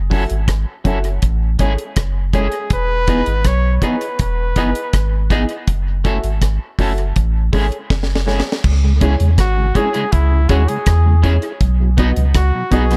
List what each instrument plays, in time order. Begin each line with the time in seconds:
Already playing: sub bass F#1
0.10 clean electric guitar F#3 C#4 E4 A4, upright piano F#4 A4 E5, kick, open hi-hat
0.30 sub bass G#1, closed hi-hat
0.48 sub bass G#1, kick, cross-stick, closed hi-hat
0.84 sub bass F#1, clean electric guitar F#3 C#4 E4 A4, upright piano F#4 A4 E5, kick, closed hi-hat
1.04 closed hi-hat
1.22 sub bass A1, kick, closed hi-hat
1.59 sub bass G#1, clean electric guitar G#3 C#4 E4 G#4, upright piano G#4 A4 C#5, kick, closed hi-hat
1.78 closed hi-hat
1.96 sub bass F#1, kick, cross-stick, closed hi-hat
2.33 clean electric guitar G#3 C#4 E4 G#4, upright piano G#4 A4 C#5, flugelhorn G#4, kick, closed hi-hat
2.52 closed hi-hat
2.70 sub bass E1, flugelhorn B4, kick, closed hi-hat
3.07 clean electric guitar E3 B3 D#4 G#4, upright piano E4 G#4 D#5, kick, closed hi-hat
3.26 sub bass G#1, closed hi-hat
3.44 sub bass B1, flugelhorn C#5, kick, cross-stick, closed hi-hat
3.77 flugelhorn C#5
3.82 clean electric guitar E3 B3 D#4 G#4, upright piano E4 G#4 D#5, flugelhorn B4, kick, closed hi-hat
4.01 closed hi-hat
4.19 sub bass E1, flugelhorn B4, kick, closed hi-hat
4.56 sub bass F#1, clean electric guitar E3 B3 D#4 G#4, upright piano E4 G#4 D#5, kick, closed hi-hat
4.75 closed hi-hat
4.93 sub bass G#1, kick, cross-stick, closed hi-hat
5.30 clean electric guitar E3 B3 D#4 G#4, upright piano E4 G#4 D#5, kick, cross-stick, closed hi-hat
5.49 closed hi-hat
5.67 sub bass F#1, kick, closed hi-hat
6.04 clean electric guitar A3 C#4 E4 A4, upright piano F#4 A4 E5, kick, closed hi-hat
6.24 sub bass G#1, closed hi-hat
6.42 sub bass G#1, kick, cross-stick, closed hi-hat
6.79 sub bass F#1, clean electric guitar A3 C#4 E4 A4, upright piano F#4 A4 E5, kick, open hi-hat
6.98 closed hi-hat
7.16 sub bass A1, kick, closed hi-hat
7.53 sub bass G#1, clean electric guitar G#3 C#4 E4 G#4, upright piano G#4 A4 C#5, kick, open hi-hat
7.72 closed hi-hat
7.90 sub bass F#1, kick, snare
8.03 snare
8.15 snare
8.26 clean electric guitar G#3 C#4 E4 G#4, upright piano G#4 A4 C#5, snare
8.40 snare
8.52 snare
8.64 sub bass C#2, kick, crash
8.84 tonewheel organ C#3 G#3
9.01 clean electric guitar G#3 C#4 E4 G#4, tonewheel organ C#4 E4 G#4, upright piano E4 G#4 C#5, kick, closed hi-hat
9.20 sub bass E2, tonewheel organ C#3 G#3, closed hi-hat
9.38 sub bass G#1, flugelhorn F#4, kick, cross-stick, closed hi-hat
9.58 tonewheel organ C#3 G#3
9.75 clean electric guitar G#3 C#4 E4 G#4, tonewheel organ C#4 E4 G#4, upright piano E4 G#4 C#5, flugelhorn G#4, kick, closed hi-hat
9.93 tonewheel organ C#3 G#3, clean electric guitar G#3 C#4 E4 G#4, closed hi-hat
10.12 sub bass C#2, flugelhorn E4, kick, closed hi-hat
10.31 tonewheel organ C#3 G#3
10.49 sub bass D#2, clean electric guitar G#3 C#4 E4 G#4, tonewheel organ C#4 E4 G#4, upright piano E4 G#4 C#5, flugelhorn F#4, kick, closed hi-hat
10.68 tonewheel organ C#3 G#3, flugelhorn G#4, closed hi-hat
10.86 sub bass E2, kick, cross-stick, closed hi-hat
11.05 tonewheel organ C#3 G#3
11.22 clean electric guitar G#3 C#4 E4 G#4, tonewheel organ C#4 E4 G#4, upright piano E4 G#4 C#5, kick, closed hi-hat
11.42 tonewheel organ E4 G#4, closed hi-hat
11.61 sub bass B1, kick, closed hi-hat
11.80 tonewheel organ B2 F#3
11.97 clean electric guitar B3 D#4 F#4 B4, tonewheel organ B3 D#4 F#4, upright piano F#4 B4 D#5, kick, closed hi-hat
12.16 sub bass C#2, tonewheel organ B2 F#3, closed hi-hat
12.34 sub bass C#2, flugelhorn F#4, kick, cross-stick, closed hi-hat
12.54 tonewheel organ B2 F#3
12.71 sub bass B1, clean electric guitar B3 D#4 F#4 B4, tonewheel organ B3 D#4 F#4, upright piano F#4 B4 D#5, flugelhorn G#4, kick, closed hi-hat
12.91 tonewheel organ B2 F#3, clean electric guitar B3 D#4 F#4 B4, cross-stick, closed hi-hat